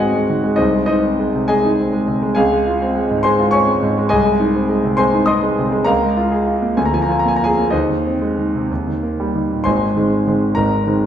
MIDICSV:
0, 0, Header, 1, 2, 480
1, 0, Start_track
1, 0, Key_signature, -4, "major"
1, 0, Tempo, 598802
1, 471, Time_signature, 6, 3, 24, 8
1, 1439, Tempo, 583090
1, 5279, Tempo, 636943
1, 7679, Tempo, 603622
1, 8805, End_track
2, 0, Start_track
2, 0, Title_t, "Grand piano"
2, 0, Program_c, 0, 0
2, 0, Control_c, 0, 64, 127
2, 0, Note_on_c, 0, 44, 72
2, 0, Note_on_c, 0, 51, 54
2, 0, Note_on_c, 0, 56, 52
2, 0, Note_on_c, 0, 60, 48
2, 0, Note_on_c, 0, 63, 49
2, 0, Note_on_c, 0, 66, 68
2, 0, Note_on_c, 0, 68, 49
2, 0, Note_on_c, 0, 72, 61
2, 0, Note_on_c, 0, 75, 53
2, 0, Note_on_c, 0, 78, 91
2, 0, Note_on_c, 0, 80, 68
2, 111, Note_off_c, 0, 56, 0
2, 111, Note_on_c, 0, 56, 46
2, 187, Note_off_c, 0, 60, 0
2, 236, Note_off_c, 0, 51, 0
2, 236, Note_on_c, 0, 51, 53
2, 302, Note_off_c, 0, 56, 0
2, 350, Note_on_c, 0, 56, 53
2, 424, Note_off_c, 0, 51, 0
2, 433, Note_off_c, 0, 68, 0
2, 434, Note_off_c, 0, 75, 0
2, 435, Note_off_c, 0, 44, 0
2, 448, Note_on_c, 0, 75, 83
2, 460, Note_off_c, 0, 63, 0
2, 460, Note_on_c, 0, 63, 63
2, 461, Note_off_c, 0, 80, 0
2, 462, Note_off_c, 0, 72, 0
2, 462, Note_on_c, 0, 72, 61
2, 469, Note_on_c, 0, 36, 62
2, 470, Note_off_c, 0, 56, 0
2, 482, Control_c, 0, 64, 0
2, 486, Note_off_c, 0, 66, 0
2, 487, Note_off_c, 0, 78, 0
2, 591, Note_on_c, 0, 56, 52
2, 607, Control_c, 0, 64, 127
2, 678, Note_off_c, 0, 75, 0
2, 688, Note_off_c, 0, 63, 0
2, 689, Note_off_c, 0, 72, 0
2, 690, Note_on_c, 0, 75, 81
2, 700, Note_on_c, 0, 63, 64
2, 701, Note_on_c, 0, 72, 62
2, 787, Note_off_c, 0, 56, 0
2, 839, Note_on_c, 0, 60, 50
2, 959, Note_on_c, 0, 56, 54
2, 1037, Note_off_c, 0, 60, 0
2, 1081, Note_on_c, 0, 48, 48
2, 1156, Note_off_c, 0, 56, 0
2, 1167, Note_off_c, 0, 63, 0
2, 1167, Note_off_c, 0, 72, 0
2, 1178, Note_off_c, 0, 75, 0
2, 1185, Note_on_c, 0, 80, 89
2, 1190, Note_on_c, 0, 75, 65
2, 1191, Note_on_c, 0, 68, 63
2, 1202, Note_on_c, 0, 56, 51
2, 1274, Note_off_c, 0, 48, 0
2, 1323, Note_on_c, 0, 63, 54
2, 1391, Note_off_c, 0, 56, 0
2, 1440, Note_on_c, 0, 60, 54
2, 1510, Note_off_c, 0, 63, 0
2, 1548, Note_on_c, 0, 56, 54
2, 1628, Note_off_c, 0, 60, 0
2, 1672, Note_on_c, 0, 48, 55
2, 1741, Note_off_c, 0, 56, 0
2, 1793, Note_on_c, 0, 56, 60
2, 1863, Note_off_c, 0, 48, 0
2, 1871, Note_off_c, 0, 68, 0
2, 1871, Note_off_c, 0, 75, 0
2, 1878, Note_off_c, 0, 36, 0
2, 1881, Note_off_c, 0, 80, 0
2, 1893, Note_on_c, 0, 80, 88
2, 1903, Note_on_c, 0, 68, 70
2, 1904, Note_on_c, 0, 77, 68
2, 1912, Note_off_c, 0, 56, 0
2, 1912, Note_on_c, 0, 37, 73
2, 1927, Control_c, 0, 64, 0
2, 2038, Note_on_c, 0, 56, 54
2, 2044, Control_c, 0, 64, 127
2, 2156, Note_on_c, 0, 65, 57
2, 2226, Note_off_c, 0, 56, 0
2, 2282, Note_on_c, 0, 60, 62
2, 2346, Note_off_c, 0, 65, 0
2, 2393, Note_on_c, 0, 56, 55
2, 2470, Note_off_c, 0, 60, 0
2, 2521, Note_on_c, 0, 44, 52
2, 2586, Note_off_c, 0, 56, 0
2, 2596, Note_off_c, 0, 68, 0
2, 2597, Note_off_c, 0, 77, 0
2, 2617, Note_off_c, 0, 80, 0
2, 2619, Note_on_c, 0, 84, 95
2, 2630, Note_on_c, 0, 72, 75
2, 2630, Note_on_c, 0, 80, 67
2, 2640, Note_on_c, 0, 56, 63
2, 2710, Note_off_c, 0, 44, 0
2, 2757, Note_on_c, 0, 65, 56
2, 2830, Note_off_c, 0, 56, 0
2, 2850, Note_on_c, 0, 85, 92
2, 2851, Note_off_c, 0, 80, 0
2, 2855, Note_off_c, 0, 72, 0
2, 2862, Note_on_c, 0, 73, 68
2, 2863, Note_on_c, 0, 80, 70
2, 2867, Note_off_c, 0, 84, 0
2, 2871, Note_on_c, 0, 60, 57
2, 2948, Note_off_c, 0, 65, 0
2, 2990, Note_on_c, 0, 56, 55
2, 3064, Note_off_c, 0, 60, 0
2, 3109, Note_on_c, 0, 44, 60
2, 3183, Note_off_c, 0, 56, 0
2, 3236, Note_on_c, 0, 56, 59
2, 3303, Note_off_c, 0, 44, 0
2, 3314, Note_off_c, 0, 73, 0
2, 3314, Note_off_c, 0, 80, 0
2, 3320, Note_off_c, 0, 37, 0
2, 3329, Note_on_c, 0, 80, 96
2, 3334, Note_on_c, 0, 68, 70
2, 3336, Note_on_c, 0, 75, 77
2, 3341, Note_off_c, 0, 85, 0
2, 3346, Note_on_c, 0, 36, 74
2, 3355, Note_off_c, 0, 56, 0
2, 3368, Control_c, 0, 64, 0
2, 3465, Note_on_c, 0, 56, 58
2, 3499, Control_c, 0, 64, 127
2, 3582, Note_on_c, 0, 63, 65
2, 3662, Note_off_c, 0, 56, 0
2, 3701, Note_on_c, 0, 60, 55
2, 3780, Note_off_c, 0, 63, 0
2, 3822, Note_on_c, 0, 56, 59
2, 3899, Note_off_c, 0, 60, 0
2, 3949, Note_on_c, 0, 48, 58
2, 4018, Note_off_c, 0, 56, 0
2, 4029, Note_off_c, 0, 68, 0
2, 4030, Note_off_c, 0, 75, 0
2, 4046, Note_off_c, 0, 80, 0
2, 4051, Note_on_c, 0, 84, 93
2, 4058, Note_on_c, 0, 72, 68
2, 4059, Note_on_c, 0, 80, 74
2, 4069, Note_on_c, 0, 56, 61
2, 4141, Note_off_c, 0, 48, 0
2, 4192, Note_on_c, 0, 63, 55
2, 4260, Note_off_c, 0, 56, 0
2, 4285, Note_off_c, 0, 72, 0
2, 4286, Note_off_c, 0, 80, 0
2, 4287, Note_off_c, 0, 84, 0
2, 4289, Note_on_c, 0, 87, 94
2, 4299, Note_on_c, 0, 75, 70
2, 4299, Note_on_c, 0, 84, 72
2, 4307, Note_on_c, 0, 60, 59
2, 4382, Note_off_c, 0, 63, 0
2, 4431, Note_on_c, 0, 56, 58
2, 4500, Note_off_c, 0, 60, 0
2, 4556, Note_on_c, 0, 48, 57
2, 4622, Note_off_c, 0, 56, 0
2, 4671, Note_on_c, 0, 56, 63
2, 4746, Note_off_c, 0, 48, 0
2, 4752, Note_off_c, 0, 75, 0
2, 4753, Note_off_c, 0, 84, 0
2, 4754, Note_off_c, 0, 36, 0
2, 4773, Note_on_c, 0, 82, 92
2, 4780, Note_off_c, 0, 87, 0
2, 4783, Note_on_c, 0, 77, 76
2, 4785, Note_on_c, 0, 70, 76
2, 4791, Note_off_c, 0, 56, 0
2, 4791, Note_on_c, 0, 37, 72
2, 4807, Control_c, 0, 64, 0
2, 4919, Note_on_c, 0, 56, 51
2, 4943, Control_c, 0, 64, 127
2, 5039, Note_on_c, 0, 65, 62
2, 5111, Note_off_c, 0, 56, 0
2, 5158, Note_on_c, 0, 68, 59
2, 5233, Note_off_c, 0, 65, 0
2, 5289, Note_on_c, 0, 65, 55
2, 5348, Note_off_c, 0, 68, 0
2, 5400, Note_on_c, 0, 58, 54
2, 5467, Note_off_c, 0, 65, 0
2, 5476, Note_off_c, 0, 77, 0
2, 5477, Note_off_c, 0, 70, 0
2, 5489, Note_off_c, 0, 37, 0
2, 5501, Note_off_c, 0, 82, 0
2, 5512, Note_off_c, 0, 58, 0
2, 5513, Note_on_c, 0, 80, 72
2, 5514, Note_on_c, 0, 38, 62
2, 5525, Control_c, 0, 64, 0
2, 5574, Note_off_c, 0, 80, 0
2, 5576, Note_on_c, 0, 82, 67
2, 5630, Note_on_c, 0, 53, 51
2, 5638, Note_off_c, 0, 82, 0
2, 5640, Note_on_c, 0, 80, 68
2, 5667, Control_c, 0, 64, 127
2, 5702, Note_off_c, 0, 80, 0
2, 5702, Note_on_c, 0, 82, 66
2, 5751, Note_on_c, 0, 65, 53
2, 5766, Note_off_c, 0, 82, 0
2, 5772, Note_on_c, 0, 80, 66
2, 5820, Note_off_c, 0, 53, 0
2, 5832, Note_on_c, 0, 82, 72
2, 5833, Note_off_c, 0, 80, 0
2, 5872, Note_on_c, 0, 58, 52
2, 5896, Note_off_c, 0, 82, 0
2, 5898, Note_on_c, 0, 80, 68
2, 5941, Note_off_c, 0, 65, 0
2, 5961, Note_on_c, 0, 82, 71
2, 5962, Note_off_c, 0, 80, 0
2, 5997, Note_on_c, 0, 65, 50
2, 6016, Note_on_c, 0, 80, 83
2, 6023, Note_on_c, 0, 68, 65
2, 6025, Note_off_c, 0, 82, 0
2, 6063, Note_off_c, 0, 58, 0
2, 6120, Note_on_c, 0, 58, 50
2, 6186, Note_off_c, 0, 65, 0
2, 6211, Note_off_c, 0, 38, 0
2, 6214, Note_off_c, 0, 68, 0
2, 6217, Note_on_c, 0, 75, 75
2, 6226, Note_off_c, 0, 80, 0
2, 6230, Note_on_c, 0, 63, 50
2, 6230, Note_on_c, 0, 72, 55
2, 6236, Note_off_c, 0, 58, 0
2, 6237, Note_on_c, 0, 39, 68
2, 6245, Control_c, 0, 64, 0
2, 6361, Control_c, 0, 64, 127
2, 6362, Note_on_c, 0, 51, 53
2, 6481, Note_on_c, 0, 60, 56
2, 6552, Note_off_c, 0, 51, 0
2, 6603, Note_on_c, 0, 56, 49
2, 6673, Note_off_c, 0, 60, 0
2, 6726, Note_on_c, 0, 51, 45
2, 6796, Note_off_c, 0, 56, 0
2, 6852, Note_on_c, 0, 48, 47
2, 6919, Note_off_c, 0, 51, 0
2, 6945, Note_off_c, 0, 39, 0
2, 6969, Note_off_c, 0, 48, 0
2, 6974, Note_on_c, 0, 39, 57
2, 6980, Control_c, 0, 64, 0
2, 7096, Note_on_c, 0, 51, 45
2, 7107, Control_c, 0, 64, 127
2, 7216, Note_on_c, 0, 58, 50
2, 7284, Note_off_c, 0, 51, 0
2, 7343, Note_on_c, 0, 55, 49
2, 7404, Note_off_c, 0, 58, 0
2, 7417, Note_off_c, 0, 63, 0
2, 7417, Note_off_c, 0, 72, 0
2, 7440, Note_off_c, 0, 75, 0
2, 7459, Note_on_c, 0, 51, 42
2, 7526, Note_off_c, 0, 55, 0
2, 7577, Note_on_c, 0, 46, 46
2, 7641, Note_off_c, 0, 51, 0
2, 7665, Note_off_c, 0, 39, 0
2, 7673, Note_on_c, 0, 84, 82
2, 7684, Note_on_c, 0, 80, 66
2, 7687, Note_off_c, 0, 46, 0
2, 7687, Note_on_c, 0, 72, 61
2, 7693, Note_on_c, 0, 32, 64
2, 7696, Control_c, 0, 64, 0
2, 7697, Note_on_c, 0, 44, 60
2, 7837, Control_c, 0, 64, 127
2, 7921, Note_off_c, 0, 32, 0
2, 7923, Note_off_c, 0, 44, 0
2, 7933, Note_on_c, 0, 51, 49
2, 7937, Note_on_c, 0, 56, 50
2, 7941, Note_on_c, 0, 60, 53
2, 8146, Note_off_c, 0, 51, 0
2, 8148, Note_off_c, 0, 56, 0
2, 8151, Note_off_c, 0, 60, 0
2, 8176, Note_on_c, 0, 51, 44
2, 8178, Note_on_c, 0, 56, 48
2, 8184, Note_on_c, 0, 60, 49
2, 8376, Note_off_c, 0, 80, 0
2, 8377, Note_off_c, 0, 72, 0
2, 8388, Note_off_c, 0, 51, 0
2, 8389, Note_off_c, 0, 56, 0
2, 8393, Note_off_c, 0, 60, 0
2, 8397, Note_on_c, 0, 82, 82
2, 8402, Note_off_c, 0, 84, 0
2, 8405, Note_on_c, 0, 70, 62
2, 8414, Note_on_c, 0, 44, 57
2, 8416, Note_on_c, 0, 32, 55
2, 8642, Note_off_c, 0, 32, 0
2, 8642, Note_off_c, 0, 44, 0
2, 8653, Note_on_c, 0, 51, 47
2, 8656, Note_on_c, 0, 56, 47
2, 8660, Note_on_c, 0, 60, 51
2, 8805, Note_off_c, 0, 51, 0
2, 8805, Note_off_c, 0, 56, 0
2, 8805, Note_off_c, 0, 60, 0
2, 8805, Note_off_c, 0, 70, 0
2, 8805, Note_off_c, 0, 82, 0
2, 8805, End_track
0, 0, End_of_file